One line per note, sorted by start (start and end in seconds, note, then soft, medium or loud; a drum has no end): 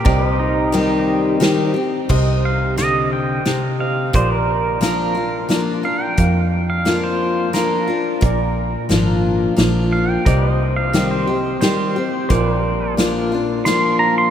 0.00 0.39 G4 medium
0.05 1.64 C2 medium
0.05 1.34 C3 medium
0.05 2.05 G4 medium
0.05 0.30 A#4 medium
0.05 2.05 C5 medium
0.05 0.26 D5 medium
0.05 2.06 D#5 medium
0.05 2.06 G5 medium
0.05 kick loud
0.05 ride medium
0.26 2.07 C5 medium
0.26 2.07 D#5 medium
0.39 1.71 D#4 medium
0.72 1.37 D#3 loud
0.72 1.38 G3 medium
0.72 1.38 C4 loud
0.72 1.39 G4 loud
0.72 ride medium
1.40 1.73 D#3 loud
1.40 1.74 G3 medium
1.40 1.74 C4 loud
1.40 1.73 G4 medium
1.40 snare medium
1.40 ride medium
1.74 2.08 C4 soft
1.74 2.07 G4 medium
2.09 3.68 C2 medium
2.09 3.39 C3 medium
2.09 3.76 G4 medium
2.09 4.12 C5 medium
2.09 3.76 C5 medium
2.09 4.12 D#5 medium
2.09 3.77 D#5 medium
2.09 kick loud
2.09 crash medium
2.45 2.77 F5 medium
2.77 3.42 D3 medium
2.77 3.11 D#5 medium
2.77 snare medium
2.77 closed hi-hat medium
3.13 3.78 G5 medium
3.46 4.10 C3 medium
3.46 snare medium
3.46 closed hi-hat medium
3.79 4.13 G4 soft
3.79 4.13 C5 soft
3.79 4.14 D#5 soft
3.79 4.13 F5 medium
4.13 5.72 A#1 medium
4.13 5.43 A#2 medium
4.13 6.14 F4 medium
4.13 6.14 A#4 medium
4.13 4.40 C5 medium
4.13 4.31 C5 medium
4.13 6.14 D5 medium
4.13 10.23 D5 medium
4.13 kick loud
4.13 closed hi-hat medium
4.32 4.81 A#4 medium
4.40 10.23 A#4 medium
4.81 5.14 F3 medium
4.81 5.14 A#3 medium
4.81 5.15 D4 medium
4.81 5.14 F4 medium
4.81 5.48 A#4 medium
4.81 snare medium
4.81 closed hi-hat medium
5.15 5.49 D4 soft
5.15 5.48 F4 medium
5.49 5.82 F3 medium
5.49 5.82 A#3 medium
5.49 5.83 D4 medium
5.49 5.82 F4 medium
5.49 snare medium
5.49 closed hi-hat medium
5.83 6.17 D4 soft
5.83 6.16 F4 medium
5.83 6.02 F5 medium
6.02 6.67 G5 medium
6.17 7.47 F2 medium
6.17 7.76 F2 medium
6.17 8.18 F4 medium
6.17 8.18 A#4 medium
6.17 8.19 F5 medium
6.17 kick loud
6.17 closed hi-hat medium
6.70 7.02 F5 medium
6.85 7.50 F3 medium
6.85 7.50 A#3 medium
6.85 7.51 D4 medium
6.85 7.51 F4 medium
6.85 snare medium
6.85 closed hi-hat medium
7.04 7.53 C5 medium
7.53 7.86 F3 medium
7.53 7.87 A#3 medium
7.53 7.87 D4 medium
7.53 7.86 F4 medium
7.53 8.86 A#4 medium
7.53 snare medium
7.53 closed hi-hat medium
7.87 8.21 D4 soft
7.87 8.20 F4 medium
8.21 8.75 A#1 medium
8.21 9.51 A#2 medium
8.21 10.22 F4 medium
8.21 10.22 A#4 medium
8.21 10.23 D5 medium
8.21 kick loud
8.21 closed hi-hat medium
8.89 9.48 G#1 medium
8.89 9.54 F3 medium
8.89 9.54 A#3 medium
8.89 9.55 D4 medium
8.89 9.55 F4 medium
8.89 snare medium
8.89 closed hi-hat medium
9.56 10.16 A#1 medium
9.56 10.22 F3 medium
9.56 10.22 A#3 medium
9.56 10.23 D4 medium
9.56 10.23 F4 loud
9.56 snare medium
9.56 closed hi-hat medium
9.93 10.10 F5 medium
10.10 10.75 G5 medium
10.25 11.84 C2 medium
10.25 11.56 C3 medium
10.25 11.26 G4 medium
10.25 10.50 A#4 medium
10.25 11.27 C5 medium
10.25 10.47 D5 medium
10.25 11.27 D#5 medium
10.25 kick loud
10.25 closed hi-hat medium
10.47 12.28 C5 medium
10.47 12.29 D#5 medium
10.76 11.10 F5 loud
10.93 11.27 D#3 medium
10.93 11.27 G3 medium
10.93 11.27 C4 medium
10.93 11.26 G4 loud
10.93 snare medium
10.93 closed hi-hat medium
11.11 11.60 C5 medium
11.27 11.62 C4 soft
11.27 11.61 G4 medium
11.27 12.30 G4 medium
11.27 12.31 C5 soft
11.27 12.31 D#5 medium
11.61 11.95 D#3 medium
11.61 11.95 G3 medium
11.61 11.95 C4 medium
11.61 11.95 G4 medium
11.61 12.94 C5 medium
11.61 snare medium
11.61 closed hi-hat medium
11.96 12.30 C4 soft
11.96 12.29 G4 medium
12.29 13.88 A#1 medium
12.29 13.60 A#2 medium
12.29 14.30 F4 medium
12.29 14.30 A#4 medium
12.29 12.54 C5 medium
12.29 14.30 D5 medium
12.29 kick loud
12.29 closed hi-hat medium
12.54 14.30 A#4 medium
12.97 13.31 F3 medium
12.97 13.31 A#3 medium
12.97 13.31 D4 medium
12.97 13.31 F4 medium
12.97 snare medium
12.97 closed hi-hat medium
13.32 13.66 D4 soft
13.32 13.65 F4 medium
13.65 14.30 F3 medium
13.65 14.30 A#3 loud
13.65 14.30 D4 loud
13.65 14.30 F4 medium
13.65 13.99 C6 medium
13.65 snare medium
13.65 closed hi-hat medium
13.99 14.16 A#5 medium
14.18 14.30 C6 medium